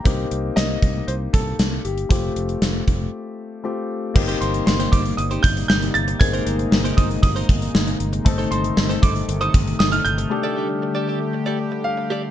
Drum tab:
CC |----------------|----------------|x---------------|----------------|
HH |x-x-x-x-x-x-x-xx|x-xxx-x---------|-xxx-xxxxxxx-xxx|xxxx-xxxxxxx-xxx|
TB |----------------|----------------|----------------|----------------|
SD |----o-------o---|----o-----------|----o-------o---|----o-------o---|
BD |o-----o---o-----|o-----o---------|o-----o---o-----|o-----o-o-o-----|

CC |----------------|----------------|
HH |xxxx-xxxxxxx-xxx|----------------|
TB |----x-------x---|----------------|
SD |----o-------o---|----------------|
BD |o-----o---o-----|----------------|